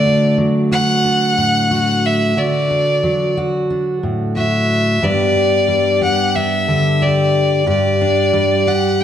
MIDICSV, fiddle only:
0, 0, Header, 1, 2, 480
1, 0, Start_track
1, 0, Tempo, 661667
1, 1722, Time_signature, 4, 2, 24, 8
1, 6555, End_track
2, 0, Start_track
2, 0, Title_t, "Fiddle"
2, 0, Program_c, 0, 110
2, 0, Note_on_c, 0, 74, 84
2, 254, Note_off_c, 0, 74, 0
2, 523, Note_on_c, 0, 78, 89
2, 1493, Note_on_c, 0, 76, 71
2, 1504, Note_off_c, 0, 78, 0
2, 1723, Note_on_c, 0, 74, 66
2, 1734, Note_off_c, 0, 76, 0
2, 2443, Note_off_c, 0, 74, 0
2, 3165, Note_on_c, 0, 76, 73
2, 3649, Note_on_c, 0, 74, 81
2, 3660, Note_off_c, 0, 76, 0
2, 4366, Note_off_c, 0, 74, 0
2, 4375, Note_on_c, 0, 78, 69
2, 4610, Note_on_c, 0, 76, 67
2, 4621, Note_off_c, 0, 78, 0
2, 5093, Note_on_c, 0, 74, 72
2, 5103, Note_off_c, 0, 76, 0
2, 5568, Note_off_c, 0, 74, 0
2, 5575, Note_on_c, 0, 74, 77
2, 6293, Note_on_c, 0, 78, 65
2, 6304, Note_off_c, 0, 74, 0
2, 6531, Note_on_c, 0, 79, 66
2, 6542, Note_off_c, 0, 78, 0
2, 6555, Note_off_c, 0, 79, 0
2, 6555, End_track
0, 0, End_of_file